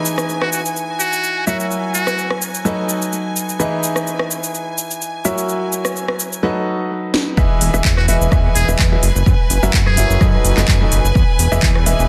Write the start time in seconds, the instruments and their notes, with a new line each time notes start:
Already playing: grand piano E3 D#4 E4 G#4 B4 D#5, violin section G#5
0.06 cabasa
0.18 cross-stick, cabasa
0.29 cabasa
0.41 muted trumpet F#4, cross-stick
0.52 muted trumpet F#4, cabasa
0.66 cabasa
0.76 cabasa
1.00 muted trumpet F#4, cabasa
1.13 cabasa
1.24 cabasa
1.47 grand piano F#3 E4 F#4 A#4 C#5 E5, muted trumpet F#4, cabasa
1.60 muted trumpet F#4, cabasa
1.71 cabasa
1.94 muted trumpet F#4, cabasa
2.07 cross-stick, cabasa
2.18 cabasa
2.30 cross-stick
2.42 cabasa
2.55 cabasa
2.65 grand piano F#3 D#4 F#4 A4 B4 D#5, cabasa
2.89 cabasa
3.02 cabasa
3.13 cabasa
3.36 cabasa
3.49 cabasa
3.59 grand piano E3 D#4 E4 G#4 B4 D#5, cabasa
3.84 cabasa
3.96 cross-stick, cabasa
4.07 cabasa
4.19 cross-stick
4.31 cabasa
4.44 cabasa
4.55 cabasa
4.78 cabasa
4.91 cabasa
5.02 cabasa
5.25 grand piano F#3 E4 F#4 A#4 C#5 E5, cabasa
5.38 cabasa
5.49 cabasa
5.73 cabasa
5.85 cross-stick, cabasa
5.96 cabasa
6.08 cross-stick
6.20 cabasa
6.33 cabasa
6.43 grand piano F#3 D#4 F#4 A4 B4 D#5
7.14 snare
7.37 analog synth bass E2, grand piano E3 E4 G#4 B4 D#5 E5, violin section B4 G#5, kick, cabasa
7.61 analog synth bass E1, open hi-hat, cabasa
7.74 analog synth bass E1, grand piano E3 E4 G#4 B4 D#5 E5, cabasa
7.85 analog synth bass E2, kick, clap, cabasa
7.97 muted trumpet F#4, cross-stick
8.08 analog synth bass E1, grand piano E3 E4 G#4 B4 D#5 E5, muted trumpet F#4, open hi-hat, cabasa
8.21 analog synth bass E1, cabasa
8.32 analog synth bass E2, grand piano E3 E4 G#4 B4 D#5 E5, kick, cross-stick, cabasa
8.55 analog synth bass E1, muted trumpet G#4, open hi-hat, cabasa
8.68 analog synth bass E1, grand piano E3 E4 G#4 B4 D#5 E5, cabasa
8.79 analog synth bass E2, kick, clap, cabasa
8.92 grand piano F#3 E4 G#4 B4 D#5 E5
9.03 analog synth bass F#1, open hi-hat, cabasa
9.15 analog synth bass F#1, cabasa
9.26 analog synth bass F#2, kick, cabasa
9.50 analog synth bass F#1, open hi-hat, cabasa
9.63 analog synth bass F#1, grand piano F#3 E4 F#4 A#4 C#5 E5, cabasa
9.74 analog synth bass F#2, kick, clap, cabasa
9.86 muted trumpet G#4, cross-stick
9.97 analog synth bass F#1, grand piano E4 F#4 A#4 C#5 E5, open hi-hat, cabasa
10.10 analog synth bass F#1, cabasa
10.21 analog synth bass F#2, grand piano F#3 D#4 F#4 A4 B4 D#5, kick, cross-stick, cabasa
10.45 analog synth bass F#1, open hi-hat, cabasa
10.57 analog synth bass F#1, grand piano F#3 D#4 F#4 A4 B4 D#5, clap, cabasa
10.68 analog synth bass F#2, kick, clap, cabasa
10.81 grand piano F#3 D#4 F#4 A4 B4 D#5
10.92 analog synth bass F#1, open hi-hat, cabasa
11.04 analog synth bass F#1, cabasa
11.15 analog synth bass E2, kick, cabasa
11.39 analog synth bass E1, open hi-hat, cabasa
11.52 analog synth bass E1, grand piano E3 E4 G#4 B4 D#5 E5, cabasa
11.63 analog synth bass E2, kick, clap, cabasa
11.75 cross-stick
11.86 analog synth bass E1, grand piano E3 E4 G#4 B4 D#5 E5, open hi-hat, cabasa
11.99 analog synth bass E1, cabasa